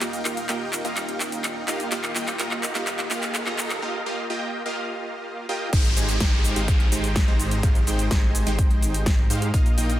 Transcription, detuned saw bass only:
0.01 D#1
0.25 D#1
0.49 D#1
0.85 D#1
1.68 D#1
1.92 D#1
2.16 D#1
2.39 D#1
2.75 D#1
3.11 D#1
3.47 D#1
5.73 G#1
5.97 G#1
6.20 G#1
6.56 G#1
6.92 G#1
7.28 G#1
7.63 G#1
7.87 G#1
8.11 G#1
8.47 G#1
9.30 G#2
9.54 A#1
9.78 A#1

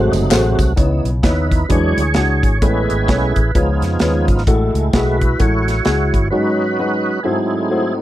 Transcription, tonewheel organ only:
Already playing: C3 F#3 A3 F#4
0.12 D#4
0.30 F#4
0.76 E3 B3 D#4
1.23 D#4 E4 B4
1.69 F#3 G#3 D4 G#4 C#5
2.62 G#3 B3 C#4 E4 G#4 B4
3.55 F3 B3 D#4 F4 G#4
4.48 G#3 A3 E4
4.95 E4 F#4 B4
5.40 E4 F#4 C#5
6.30 F#3 C#4 D#4 F#4 B4
7.23 F#3 A3 C4 D#4 E4 G#4

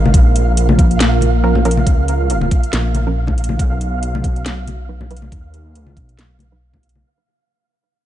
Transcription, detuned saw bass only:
Already playing: G#1
0.14 A#1
1.01 A#1
1.87 C#2
2.73 A#1
3.59 B1
4.46 B1
5.32 D#2
5.77 D2
5.97 B1

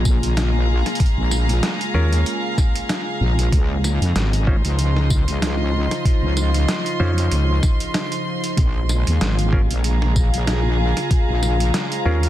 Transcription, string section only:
Already playing: F4 G#4 D#5 F5 A#5 C6
3.90 D#5
4.04 F4
4.49 C6
8.92 G#4
9.09 F5
9.72 A#5

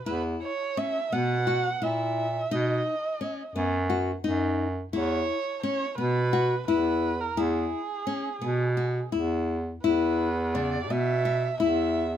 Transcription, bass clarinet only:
0.06 E2
1.13 B2
1.83 A#2
2.52 B2
3.55 F#2
4.24 F#2
4.94 E2
5.98 B2
6.68 E2
7.37 E2
8.42 B2
9.13 E2
9.84 E2
10.89 B2
11.60 E2

